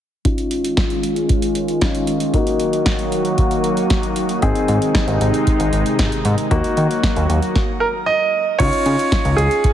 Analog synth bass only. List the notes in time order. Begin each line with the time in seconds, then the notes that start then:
4.42 G#1
4.68 G#2
5.08 G#1
5.21 G#1
5.60 G#1
5.73 G#1
5.99 G#1
6.25 G#2
6.51 D#2
6.77 D#3
7.16 D#2
7.29 D#2
8.60 C#2
8.86 C#3
9.25 C#2
9.38 C#2